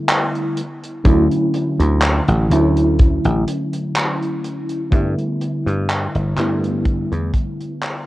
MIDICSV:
0, 0, Header, 1, 4, 480
1, 0, Start_track
1, 0, Key_signature, 2, "major"
1, 0, Tempo, 967742
1, 522, Time_signature, 4, 2, 24, 8
1, 4000, End_track
2, 0, Start_track
2, 0, Title_t, "FM electric piano"
2, 0, Program_c, 0, 5
2, 0, Control_c, 0, 64, 127
2, 0, Note_on_c, 0, 50, 88
2, 0, Note_on_c, 0, 55, 79
2, 0, Note_on_c, 0, 57, 75
2, 0, Note_on_c, 0, 59, 75
2, 0, Note_on_c, 0, 64, 96
2, 266, Note_off_c, 0, 50, 0
2, 267, Note_off_c, 0, 55, 0
2, 269, Note_off_c, 0, 57, 0
2, 271, Note_off_c, 0, 59, 0
2, 273, Note_off_c, 0, 64, 0
2, 288, Control_c, 0, 64, 0
2, 385, Control_c, 0, 64, 127
2, 515, Note_on_c, 0, 50, 82
2, 518, Note_on_c, 0, 54, 77
2, 522, Note_on_c, 0, 57, 79
2, 526, Note_on_c, 0, 61, 76
2, 530, Note_on_c, 0, 64, 91
2, 1212, Note_off_c, 0, 50, 0
2, 1214, Note_off_c, 0, 54, 0
2, 1216, Note_off_c, 0, 57, 0
2, 1218, Note_off_c, 0, 61, 0
2, 1220, Note_off_c, 0, 64, 0
2, 1235, Note_on_c, 0, 50, 89
2, 1238, Note_on_c, 0, 54, 80
2, 1243, Note_on_c, 0, 57, 78
2, 1246, Note_on_c, 0, 61, 80
2, 1250, Note_on_c, 0, 64, 100
2, 2412, Note_off_c, 0, 50, 0
2, 2414, Note_off_c, 0, 54, 0
2, 2416, Note_off_c, 0, 57, 0
2, 2418, Note_off_c, 0, 61, 0
2, 2419, Note_off_c, 0, 64, 0
2, 2435, Note_on_c, 0, 50, 86
2, 2438, Note_on_c, 0, 55, 80
2, 2442, Note_on_c, 0, 57, 81
2, 2446, Note_on_c, 0, 59, 75
2, 2449, Control_c, 0, 64, 0
2, 2450, Note_on_c, 0, 64, 93
2, 2526, Control_c, 0, 64, 127
2, 3132, Note_off_c, 0, 50, 0
2, 3134, Note_off_c, 0, 55, 0
2, 3136, Note_off_c, 0, 57, 0
2, 3137, Note_off_c, 0, 59, 0
2, 3139, Note_off_c, 0, 64, 0
2, 3156, Note_on_c, 0, 50, 89
2, 3159, Note_on_c, 0, 55, 83
2, 3162, Note_on_c, 0, 57, 81
2, 3167, Note_on_c, 0, 59, 83
2, 3170, Note_on_c, 0, 64, 100
2, 4000, Note_off_c, 0, 50, 0
2, 4000, Note_off_c, 0, 55, 0
2, 4000, Note_off_c, 0, 57, 0
2, 4000, Note_off_c, 0, 59, 0
2, 4000, Note_off_c, 0, 64, 0
2, 4000, End_track
3, 0, Start_track
3, 0, Title_t, "Slap bass"
3, 0, Program_c, 1, 36
3, 521, Note_on_c, 1, 38, 101
3, 628, Note_off_c, 1, 38, 0
3, 890, Note_on_c, 1, 38, 85
3, 1087, Note_off_c, 1, 38, 0
3, 1131, Note_on_c, 1, 33, 86
3, 1223, Note_off_c, 1, 33, 0
3, 1242, Note_on_c, 1, 38, 94
3, 1576, Note_off_c, 1, 38, 0
3, 1611, Note_on_c, 1, 33, 83
3, 1703, Note_off_c, 1, 33, 0
3, 2442, Note_on_c, 1, 43, 99
3, 2549, Note_off_c, 1, 43, 0
3, 2810, Note_on_c, 1, 43, 83
3, 3006, Note_off_c, 1, 43, 0
3, 3051, Note_on_c, 1, 31, 85
3, 3143, Note_off_c, 1, 31, 0
3, 3162, Note_on_c, 1, 43, 99
3, 3495, Note_off_c, 1, 43, 0
3, 3530, Note_on_c, 1, 40, 87
3, 3623, Note_off_c, 1, 40, 0
3, 4000, End_track
4, 0, Start_track
4, 0, Title_t, "Drums"
4, 41, Note_on_c, 9, 42, 67
4, 45, Note_on_c, 9, 39, 125
4, 91, Note_off_c, 9, 42, 0
4, 94, Note_off_c, 9, 39, 0
4, 175, Note_on_c, 9, 42, 45
4, 224, Note_off_c, 9, 42, 0
4, 283, Note_on_c, 9, 42, 89
4, 333, Note_off_c, 9, 42, 0
4, 415, Note_on_c, 9, 42, 59
4, 464, Note_off_c, 9, 42, 0
4, 521, Note_on_c, 9, 36, 110
4, 524, Note_on_c, 9, 42, 64
4, 571, Note_off_c, 9, 36, 0
4, 574, Note_off_c, 9, 42, 0
4, 651, Note_on_c, 9, 42, 49
4, 701, Note_off_c, 9, 42, 0
4, 763, Note_on_c, 9, 42, 96
4, 813, Note_off_c, 9, 42, 0
4, 893, Note_on_c, 9, 42, 71
4, 943, Note_off_c, 9, 42, 0
4, 1001, Note_on_c, 9, 39, 114
4, 1002, Note_on_c, 9, 42, 65
4, 1050, Note_off_c, 9, 39, 0
4, 1051, Note_off_c, 9, 42, 0
4, 1130, Note_on_c, 9, 42, 46
4, 1180, Note_off_c, 9, 42, 0
4, 1246, Note_on_c, 9, 42, 95
4, 1296, Note_off_c, 9, 42, 0
4, 1372, Note_on_c, 9, 42, 61
4, 1422, Note_off_c, 9, 42, 0
4, 1482, Note_on_c, 9, 42, 59
4, 1484, Note_on_c, 9, 36, 112
4, 1531, Note_off_c, 9, 42, 0
4, 1534, Note_off_c, 9, 36, 0
4, 1609, Note_on_c, 9, 42, 43
4, 1659, Note_off_c, 9, 42, 0
4, 1725, Note_on_c, 9, 42, 102
4, 1775, Note_off_c, 9, 42, 0
4, 1851, Note_on_c, 9, 42, 68
4, 1901, Note_off_c, 9, 42, 0
4, 1963, Note_on_c, 9, 42, 60
4, 1965, Note_on_c, 9, 39, 118
4, 2013, Note_off_c, 9, 42, 0
4, 2014, Note_off_c, 9, 39, 0
4, 2096, Note_on_c, 9, 42, 43
4, 2145, Note_off_c, 9, 42, 0
4, 2205, Note_on_c, 9, 42, 88
4, 2254, Note_off_c, 9, 42, 0
4, 2329, Note_on_c, 9, 42, 61
4, 2378, Note_off_c, 9, 42, 0
4, 2442, Note_on_c, 9, 36, 114
4, 2444, Note_on_c, 9, 42, 69
4, 2491, Note_off_c, 9, 36, 0
4, 2494, Note_off_c, 9, 42, 0
4, 2573, Note_on_c, 9, 42, 47
4, 2623, Note_off_c, 9, 42, 0
4, 2685, Note_on_c, 9, 42, 84
4, 2735, Note_off_c, 9, 42, 0
4, 2816, Note_on_c, 9, 42, 61
4, 2866, Note_off_c, 9, 42, 0
4, 2922, Note_on_c, 9, 42, 76
4, 2926, Note_on_c, 9, 39, 122
4, 2972, Note_off_c, 9, 42, 0
4, 2975, Note_off_c, 9, 39, 0
4, 3050, Note_on_c, 9, 42, 44
4, 3100, Note_off_c, 9, 42, 0
4, 3162, Note_on_c, 9, 39, 55
4, 3164, Note_on_c, 9, 42, 92
4, 3212, Note_off_c, 9, 39, 0
4, 3213, Note_off_c, 9, 42, 0
4, 3294, Note_on_c, 9, 42, 62
4, 3343, Note_off_c, 9, 42, 0
4, 3399, Note_on_c, 9, 36, 115
4, 3401, Note_on_c, 9, 42, 63
4, 3449, Note_off_c, 9, 36, 0
4, 3451, Note_off_c, 9, 42, 0
4, 3534, Note_on_c, 9, 42, 52
4, 3584, Note_off_c, 9, 42, 0
4, 3639, Note_on_c, 9, 36, 108
4, 3642, Note_on_c, 9, 42, 101
4, 3688, Note_off_c, 9, 36, 0
4, 3691, Note_off_c, 9, 42, 0
4, 3773, Note_on_c, 9, 42, 60
4, 3822, Note_off_c, 9, 42, 0
4, 3882, Note_on_c, 9, 39, 107
4, 3884, Note_on_c, 9, 42, 57
4, 3932, Note_off_c, 9, 39, 0
4, 3933, Note_off_c, 9, 42, 0
4, 4000, End_track
0, 0, End_of_file